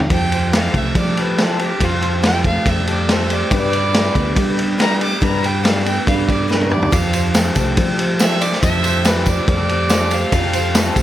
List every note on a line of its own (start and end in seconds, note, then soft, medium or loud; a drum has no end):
0.10 0.67 F2 medium
0.10 0.31 F3 medium
0.10 0.31 G3 medium
0.10 0.31 C4 medium
0.10 0.30 G4 medium
0.10 0.29 A4 medium
0.10 0.52 G5 medium
0.10 kick loud
0.10 ride medium
0.31 0.53 C4 soft
0.31 0.52 G4 soft
0.31 0.52 A4 soft
0.31 1.36 C5 medium
0.31 ride medium
0.53 0.74 F3 medium
0.53 0.74 G3 medium
0.53 0.74 C4 medium
0.53 0.74 G4 medium
0.53 0.74 A4 medium
0.53 0.79 F5 medium
0.53 snare loud
0.53 ride medium
0.74 0.93 C2 medium
0.74 1.80 A3 medium
0.74 0.96 C4 soft
0.74 0.96 G4 soft
0.74 0.96 A4 medium
0.74 0.96 E5 medium
0.74 kick medium
0.74 ride medium
0.95 1.71 F3 medium
0.95 1.17 G3 medium
0.95 1.17 C4 medium
0.95 1.17 G4 medium
0.95 1.15 A4 medium
0.95 1.21 D5 medium
0.95 kick medium
0.95 ride medium
1.17 1.38 C4 soft
1.17 1.38 G4 soft
1.17 1.38 A4 soft
1.17 1.42 B4 medium
1.17 ride medium
1.38 1.59 F3 medium
1.38 1.59 G3 medium
1.38 1.60 C4 medium
1.38 1.59 G4 medium
1.38 1.58 A4 medium
1.38 1.60 A4 medium
1.38 1.99 C5 medium
1.38 snare medium
1.38 ride medium
1.59 1.80 C4 soft
1.59 1.80 G4 soft
1.59 1.85 G4 medium
1.59 1.80 A4 medium
1.59 ride medium
1.80 2.57 F2 loud
1.80 2.02 F3 medium
1.80 2.02 G3 medium
1.80 2.02 C4 medium
1.80 2.03 F4 medium
1.80 2.01 G4 medium
1.80 2.00 A4 medium
1.80 kick medium
1.80 ride medium
2.01 2.22 C4 soft
2.01 2.22 G4 soft
2.01 2.23 A4 soft
2.01 3.07 C5 medium
2.01 ride medium
2.22 2.44 F3 medium
2.22 2.44 G3 medium
2.22 2.44 C4 medium
2.22 2.44 G4 medium
2.22 2.43 A4 medium
2.22 2.45 G5 loud
2.22 snare loud
2.22 ride medium
2.44 3.51 A3 medium
2.44 2.64 C4 soft
2.44 2.65 G4 soft
2.44 2.65 A4 soft
2.44 2.70 F5 medium
2.44 kick medium
2.44 ride medium
2.65 3.42 F2 medium
2.65 2.86 G3 medium
2.65 2.87 C4 medium
2.65 2.87 G4 medium
2.65 2.86 A4 medium
2.65 2.88 E5 medium
2.65 kick medium
2.65 ride medium
2.87 3.09 C4 soft
2.87 3.09 G4 soft
2.87 3.09 A4 soft
2.87 3.13 D5 medium
2.87 ride medium
3.08 3.30 F3 medium
3.08 3.30 G3 medium
3.08 3.30 C4 medium
3.08 3.30 G4 medium
3.08 3.29 A4 medium
3.08 3.51 C5 medium
3.08 3.34 E5 medium
3.08 snare loud
3.08 ride medium
3.30 3.52 C4 soft
3.30 3.51 G4 soft
3.30 3.51 A4 medium
3.30 3.52 D5 medium
3.30 ride medium
3.51 4.08 G2 loud
3.51 3.72 G3 medium
3.51 3.73 B3 medium
3.51 3.73 D4 medium
3.51 3.72 G4 medium
3.51 3.70 B4 medium
3.51 kick loud
3.51 ride medium
3.55 4.36 D5 loud
3.72 3.93 D4 soft
3.72 3.94 G4 soft
3.72 3.93 B4 soft
3.72 ride medium
3.93 4.15 G3 medium
3.93 4.15 B3 medium
3.93 4.15 D4 medium
3.93 4.15 G4 medium
3.93 4.14 B4 medium
3.93 snare loud
3.93 ride medium
4.14 4.34 D2 medium
4.14 5.21 B3 medium
4.14 4.35 D4 medium
4.14 4.36 G4 medium
4.14 4.36 B4 medium
4.14 kick medium
4.14 ride medium
4.35 5.13 G3 medium
4.35 4.57 B3 medium
4.35 4.57 D4 medium
4.35 4.56 G4 medium
4.35 4.55 B4 medium
4.35 kick loud
4.35 ride medium
4.56 4.78 D4 medium
4.56 4.78 G4 soft
4.56 4.78 B4 medium
4.56 ride medium
4.78 5.00 G3 medium
4.78 5.00 B3 medium
4.78 5.00 D4 medium
4.78 4.99 G4 medium
4.78 4.98 B4 medium
4.78 5.00 A#5 medium
4.78 snare loud
4.78 ride medium
4.99 5.20 D4 soft
4.99 5.20 G4 soft
4.99 5.21 B4 soft
4.99 5.22 D6 medium
4.99 ride medium
5.20 5.98 G2 loud
5.20 5.42 G3 medium
5.20 5.42 B3 medium
5.20 5.42 D4 medium
5.20 5.41 G4 medium
5.20 5.40 B4 medium
5.20 kick loud
5.20 ride medium
5.24 5.47 A#5 medium
5.41 5.63 D4 soft
5.41 5.63 G4 soft
5.41 5.63 B4 medium
5.41 ride medium
5.46 5.67 G5 medium
5.63 5.85 G3 medium
5.63 5.85 B3 medium
5.63 5.85 D4 medium
5.63 5.85 G4 medium
5.63 5.84 B4 medium
5.63 5.85 F5 medium
5.63 snare loud
5.63 ride medium
5.85 6.92 B3 medium
5.85 6.06 D4 soft
5.85 6.07 G4 soft
5.85 6.06 B4 medium
5.85 6.07 G5 medium
5.85 ride medium
6.06 6.83 G2 medium
6.06 6.28 B3 medium
6.06 6.28 D4 medium
6.06 6.27 G4 medium
6.06 6.26 B4 medium
6.06 6.28 F5 medium
6.06 kick loud
6.06 ride medium
6.27 6.48 D4 soft
6.27 6.48 G4 soft
6.27 6.48 B4 medium
6.27 6.49 D5 medium
6.27 kick medium
6.27 ride medium
6.48 6.70 G3 medium
6.48 6.70 B3 medium
6.48 6.70 D4 medium
6.48 6.69 G4 medium
6.48 6.74 A#4 medium
6.48 6.68 B4 medium
6.48 snare medium
6.61 high tom medium
6.69 6.91 D4 soft
6.69 6.91 G4 medium
6.69 6.91 B4 soft
6.69 6.95 D5 medium
6.69 mid tom medium
6.82 floor tom medium
6.91 7.49 F2 loud
6.91 7.12 F3 medium
6.91 7.13 G3 medium
6.91 7.13 C4 medium
6.91 7.13 G4 medium
6.91 7.12 A4 medium
6.91 7.34 F5 medium
6.91 kick loud
6.91 ride loud
6.91 tambourine medium
7.13 7.34 C4 soft
7.13 7.34 G4 soft
7.13 7.34 A4 medium
7.13 8.20 C5 medium
7.13 ride medium
7.13 tambourine medium
7.34 7.56 F3 medium
7.34 7.56 G3 medium
7.34 7.56 C4 medium
7.34 7.56 G4 medium
7.34 7.55 A4 medium
7.34 snare loud
7.34 ride medium
7.34 tambourine medium
7.55 7.75 C2 medium
7.55 9.08 A3 medium
7.55 7.76 C4 medium
7.55 7.78 G4 medium
7.55 7.77 A4 medium
7.55 kick medium
7.55 ride medium
7.55 tambourine medium
7.77 8.53 F3 medium
7.77 7.98 G3 medium
7.77 7.98 C4 medium
7.77 7.98 G4 medium
7.77 7.97 A4 medium
7.77 kick loud
7.77 ride medium
7.98 8.20 C4 soft
7.98 8.20 G4 medium
7.98 8.19 A4 soft
7.98 ride medium
8.19 8.41 F3 medium
8.19 8.41 G3 medium
8.19 8.41 C4 medium
8.19 8.40 G4 medium
8.19 8.39 A4 medium
8.19 8.83 C5 medium
8.19 8.43 E5 medium
8.19 snare loud
8.19 ride medium
8.19 tambourine loud
8.40 8.62 C4 soft
8.40 8.62 G4 soft
8.40 8.62 A4 soft
8.40 8.62 D5 medium
8.40 ride medium
8.40 tambourine medium
8.52 snare soft
8.62 9.39 F2 medium
8.62 8.83 F3 medium
8.62 8.84 G3 medium
8.62 8.84 C4 medium
8.62 8.84 G4 medium
8.62 8.82 A4 medium
8.62 9.08 E5 loud
8.62 kick loud
8.62 ride medium
8.62 tambourine medium
8.83 9.03 C4 soft
8.83 9.04 G4 soft
8.83 9.04 A4 medium
8.83 9.88 C5 medium
8.83 ride medium
8.83 tambourine medium
9.03 9.25 F3 medium
9.03 9.26 G3 medium
9.03 9.26 C4 medium
9.03 9.26 G4 medium
9.03 9.25 A4 medium
9.03 9.30 B4 medium
9.03 snare loud
9.03 ride medium
9.03 tambourine medium
9.26 10.78 A3 medium
9.26 9.47 C4 soft
9.26 9.47 G4 soft
9.26 9.47 A4 medium
9.26 9.48 D5 medium
9.26 kick medium
9.26 ride medium
9.26 tambourine medium
9.46 10.24 F2 medium
9.46 9.68 G3 medium
9.46 9.69 C4 medium
9.46 9.69 G4 medium
9.46 9.68 A4 medium
9.46 10.15 D5 medium
9.46 kick loud
9.46 ride medium
9.69 9.89 C4 soft
9.69 9.90 G4 soft
9.69 9.90 A4 soft
9.69 ride medium
9.89 10.11 F3 medium
9.89 10.11 G3 medium
9.89 10.11 C4 medium
9.89 10.12 G4 medium
9.89 10.10 A4 medium
9.89 10.53 C5 medium
9.89 snare loud
9.89 ride medium
9.89 tambourine medium
10.11 10.32 C4 soft
10.11 10.32 G4 soft
10.11 10.32 A4 medium
10.11 10.94 F5 medium
10.11 ride medium
10.11 tambourine medium
10.32 10.89 F2 loud
10.32 10.54 F3 medium
10.32 10.54 G3 medium
10.32 10.54 C4 medium
10.32 10.53 G4 medium
10.32 10.52 A4 medium
10.32 kick loud
10.32 ride medium
10.32 tambourine medium
10.53 10.74 C4 soft
10.53 10.75 G4 soft
10.53 10.75 A4 medium
10.53 11.03 C5 medium
10.53 ride medium
10.53 tambourine medium
10.74 10.96 F3 medium
10.74 10.96 G3 medium
10.74 10.96 C4 loud
10.74 10.96 G4 medium
10.74 10.95 A4 medium
10.74 snare loud
10.74 ride medium
10.74 tambourine medium
10.96 11.03 C2 medium
10.96 11.03 A3 medium
10.96 11.03 C4 medium
10.96 11.03 G4 medium
10.96 11.03 A4 medium
10.96 kick medium
10.96 ride medium
10.96 tambourine medium